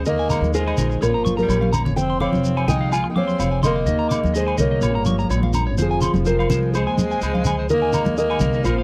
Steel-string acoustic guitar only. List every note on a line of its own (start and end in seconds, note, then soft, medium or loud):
0.07 0.51 A#4 medium
0.07 0.54 D#5 medium
0.54 0.99 G#4 medium
0.54 0.99 C5 medium
1.02 1.36 F4 medium
1.02 1.36 A#4 medium
1.38 1.72 G4 medium
1.38 1.71 A#4 medium
1.96 2.19 C5 medium
1.96 2.19 G5 loud
2.21 2.66 C#5 medium
2.21 2.68 F5 loud
2.68 2.91 D#5 medium
2.68 2.92 G5 loud
2.92 3.09 F5 medium
2.92 3.09 G#5 loud
3.10 3.16 G5 medium
3.17 3.61 C#5 medium
3.17 3.61 F5 loud
3.64 4.32 A#4 medium
3.64 4.36 D#5 medium
4.36 4.58 G#4 medium
4.36 4.60 C5 medium
4.60 5.27 A#4 medium
4.60 5.27 C#5 medium
5.79 6.23 F4 medium
5.79 6.26 G#4 medium
6.25 6.70 F4 medium
6.25 6.73 A#4 medium
6.73 7.65 G#4 medium
6.73 7.70 C5 medium
7.70 8.14 A#4 medium
7.70 8.17 D#5 loud
8.18 8.63 A#4 medium
8.18 8.62 D#5 medium
8.64 8.83 F4 medium
8.64 8.83 C5 medium